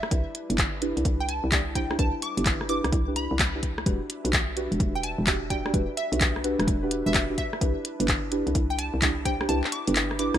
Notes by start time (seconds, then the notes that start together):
Already playing: G3 D4 E4 B4 E5
0.03 cross-stick
0.11 C2 D4 E4 G4 B4, kick, closed hi-hat
0.35 closed hi-hat
0.50 G1 D4 E4 G4 B4, closed hi-hat
0.58 kick, clap, closed hi-hat
0.81 D4 E4 G4 B4, closed hi-hat
0.97 C2, closed hi-hat
1.05 C2, kick, closed hi-hat
1.20 G5
1.29 A5, closed hi-hat
1.44 C2
1.52 D4 E4 G4 D5, kick, clap, closed hi-hat
1.75 D4 E4 G4 C5 G5, kick, cross-stick, closed hi-hat
1.91 D4 E4 G4 C5, cross-stick
1.99 C2 D4 E4 G4 B4 A5, kick, closed hi-hat
2.22 D6, closed hi-hat
2.37 G1 D4 E4 G4 B4, closed hi-hat
2.46 kick, clap, closed hi-hat
2.61 cross-stick
2.69 D4 E4 G4 B4 D6, closed hi-hat
2.84 C2, cross-stick, closed hi-hat
2.92 C2, kick, closed hi-hat
3.08 D4 E4 G4 B4
3.16 D4 E4 G4 B4 B5, closed hi-hat
3.31 C2
3.39 kick, clap, closed hi-hat
3.55 D4 E4 G4 B4
3.63 kick, closed hi-hat
3.78 cross-stick
3.86 E1 D4 F#4 G4 B4 E5, kick, closed hi-hat
4.10 closed hi-hat
4.25 B1 D4 F#4 G4 B4, closed hi-hat
4.33 kick, clap, closed hi-hat
4.56 D4 F#4 G4 B4, closed hi-hat
4.72 E1, closed hi-hat
4.80 E1, kick, closed hi-hat
4.95 G5
5.03 A5, closed hi-hat
5.18 E1
5.27 D4 F#4 G4 E5, kick, clap, closed hi-hat
5.50 D4 F#4 G4 D5 G5, kick, cross-stick, closed hi-hat
5.65 D4 F#4 G4 D5, cross-stick
5.74 E1 D4 F#4 G4 B4, kick, closed hi-hat
5.97 E5, closed hi-hat
6.12 B1 D4 F#4 G4 B4, closed hi-hat
6.21 kick, clap, closed hi-hat
6.36 cross-stick
6.44 D4 F#4 G4 B4, closed hi-hat
6.59 E1, cross-stick, closed hi-hat
6.67 E1, kick, closed hi-hat
6.83 D4 F#4 G4 B4
6.91 closed hi-hat
7.06 E1 D4 F#4 G4 B4 E5
7.14 E5, kick, clap, closed hi-hat
7.30 D4 F#4 G4 B4
7.38 E4 E5, kick, closed hi-hat
7.53 cross-stick
7.61 C2 D4 E4 G4 B4, kick, closed hi-hat
7.85 closed hi-hat
8.00 G1 D4 E4 G4 B4, closed hi-hat
8.08 kick, clap, closed hi-hat
8.32 D4 E4 G4 B4, closed hi-hat
8.47 C2, closed hi-hat
8.55 C2, kick, closed hi-hat
8.70 G5
8.79 A5, closed hi-hat
8.94 C2
9.02 D4 E4 G4 D5, kick, clap, closed hi-hat
9.25 D4 E4 G4 C5 G5, kick, cross-stick, closed hi-hat
9.40 D4 E4 G4 C5, cross-stick
9.49 C2 D4 E4 G4 B4 A5, closed hi-hat
9.64 clap
9.72 D6, closed hi-hat
9.87 G1 D4 E4 G4 B4, closed hi-hat
9.96 clap, closed hi-hat
10.11 cross-stick
10.19 D4 E4 G4 B4 D6, closed hi-hat
10.34 C2, cross-stick, closed hi-hat